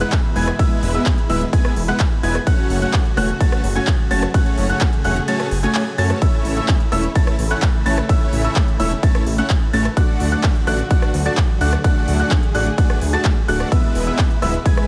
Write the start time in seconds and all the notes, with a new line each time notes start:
Already playing: B2 E3 G#3 E4
0.01 G#3 B3 E4 B4 F#5 F#6, closed hi-hat
0.12 kick, clap, closed hi-hat, ride
0.36 E1 G#3 B3 E4 B4 G#5 G#6, open hi-hat
0.47 cross-stick, closed hi-hat
0.59 G#3 B3 E4 B4 E5 E6, kick, closed hi-hat, ride
0.83 E1, open hi-hat
0.94 G#3 B3 E4 B4 E5 E6, closed hi-hat
1.06 kick, clap, closed hi-hat, ride
1.18 closed hi-hat
1.29 D1 G#3 B3 E4 B4 E5 E6, open hi-hat
1.41 closed hi-hat
1.53 G#3 B3 E4 B4 G#5 G#6, kick, closed hi-hat, ride
1.65 cross-stick, closed hi-hat
1.76 E1, open hi-hat
1.88 G#3 B3 E4 B4 F#5 F#6, closed hi-hat
2.00 kick, clap, closed hi-hat, ride
2.23 E1 G#3 B3 E4 B4 G#5 G#6, open hi-hat
2.35 cross-stick, closed hi-hat
2.47 C#3 F#3 A3 C#4 F#4 C#5 F#5 F#6, kick, closed hi-hat, ride
2.70 F#1, open hi-hat
2.82 A3 C#4 F#4 C#5 F#5 F#6, closed hi-hat
2.94 kick, clap, closed hi-hat, ride
3.05 closed hi-hat
3.17 E1 A3 C#4 F#4 C#5 F#5 F#6, cross-stick, open hi-hat
3.29 closed hi-hat
3.41 A3 C#4 F#4 C#5 A5 A6, kick, closed hi-hat, ride
3.52 cross-stick, closed hi-hat
3.64 F#1, open hi-hat
3.76 A3 C#4 F#4 C#5 G#5 G#6, closed hi-hat
3.87 kick, clap, closed hi-hat, ride
4.11 F#1 A3 C#4 F#4 C#5 A5 A6, open hi-hat
4.23 cross-stick, closed hi-hat
4.34 A3 C#4 F#4 G#4 C#5 F#5 F#6, kick, closed hi-hat, ride
4.46 closed hi-hat
4.58 F#1, open hi-hat
4.69 A3 C#4 F#4 C#5 F#5 F#6, closed hi-hat
4.81 kick, clap, closed hi-hat, ride
4.93 closed hi-hat
5.04 E1 A3 C#4 F#4 C#5 F#5 F#6, open hi-hat
5.16 closed hi-hat
5.28 A3 C#4 F#4 C#5 A5 A6, closed hi-hat, ride
5.40 cross-stick, closed hi-hat
5.51 F#1, open hi-hat
5.63 A3 C#4 F#4 C#5 G#5 G#6, closed hi-hat
5.75 clap, closed hi-hat, ride
5.98 F#2 A3 C#4 F#4 C#5 A5 A6, open hi-hat
6.10 cross-stick, closed hi-hat
6.22 C#3 E3 C#4 E4 C#5 E6, kick, closed hi-hat, ride
6.45 A1, open hi-hat
6.57 A3 C#4 E4 C#5 E5 E6, closed hi-hat
6.68 kick, clap, closed hi-hat, ride
6.80 closed hi-hat
6.92 E1 A3 C#4 E4 C#5 E5 E6, cross-stick, open hi-hat
7.04 closed hi-hat
7.15 A3 C#4 E4 C#5 A5 A6, kick, closed hi-hat, ride
7.27 cross-stick, closed hi-hat
7.39 A1, open hi-hat
7.51 A3 C#4 E4 C#5 F#5 F#6, closed hi-hat
7.62 kick, clap, closed hi-hat, ride
7.86 A1 A3 C#4 E4 C#5 A5 A6, open hi-hat
7.98 cross-stick, closed hi-hat
8.09 A3 C#4 E4 C#5 E5 E6, kick, closed hi-hat, ride
8.33 A1, open hi-hat
8.44 A3 C#4 E4 C#5 E5 E6, closed hi-hat
8.56 kick, clap, closed hi-hat, ride
8.68 closed hi-hat
8.79 E1 A3 C#4 E4 C#5 E5 E6, open hi-hat
8.91 closed hi-hat
9.03 A3 C#4 E4 C#5 A5 A6, kick, closed hi-hat, ride
9.15 cross-stick, closed hi-hat
9.26 A1, open hi-hat
9.38 A3 C#4 E4 C#5 F#5 F#6, closed hi-hat
9.50 kick, clap, closed hi-hat, ride
9.73 A1 A3 C#4 E4 C#5 A5 A6, open hi-hat
9.85 cross-stick, closed hi-hat
9.97 D3 F#3 A3 D4 F#4 D5 F#5 F#6, kick, closed hi-hat, ride
10.20 D2, open hi-hat
10.32 A3 D4 F#4 D5 F#5 F#6, closed hi-hat
10.44 kick, clap, closed hi-hat, ride
10.55 closed hi-hat
10.67 A1 A3 D4 F#4 D5 F#5 F#6, cross-stick, open hi-hat
10.79 closed hi-hat
10.91 A3 D4 F#4 D5 F#5 F#6, kick, closed hi-hat, ride
11.02 cross-stick, closed hi-hat
11.14 D2, open hi-hat
11.26 A3 D4 F#4 D5 A5 A6, closed hi-hat
11.37 kick, clap, closed hi-hat, ride
11.61 D2 A3 D4 F#4 D5 F#5 F#6, open hi-hat
11.73 cross-stick, closed hi-hat
11.84 A3 D4 F#4 G#4 D5 F#5 F#6, kick, closed hi-hat, ride
12.08 D2, open hi-hat
12.19 A3 D4 F#4 D5 F#5 F#6, closed hi-hat
12.31 kick, clap, closed hi-hat, ride
12.43 closed hi-hat
12.55 A1 A3 D4 F#4 D5 F#5 F#6, open hi-hat
12.66 closed hi-hat
12.78 A3 D4 F#4 D5 F#5 F#6, kick, closed hi-hat, ride
12.90 cross-stick, closed hi-hat
13.01 D2, open hi-hat
13.13 A3 D4 F#4 D5 A5 A6, closed hi-hat
13.25 kick, clap, closed hi-hat, ride
13.48 D1 A3 D4 F#4 D5 F#5 F#6, open hi-hat
13.60 cross-stick, closed hi-hat
13.72 B2 E3 G#3 B3 E4 B4 E5 E6, kick, closed hi-hat, ride
13.95 E1, open hi-hat
14.07 G#3 B3 E4 B4 E5 E6, closed hi-hat
14.19 kick, clap, closed hi-hat, ride
14.30 closed hi-hat
14.42 D1 G#3 B3 E4 B4 E5 E6, cross-stick, open hi-hat
14.54 closed hi-hat
14.66 G#3 B3 E4 B4 G#5 G#6, kick, closed hi-hat, ride
14.77 cross-stick, closed hi-hat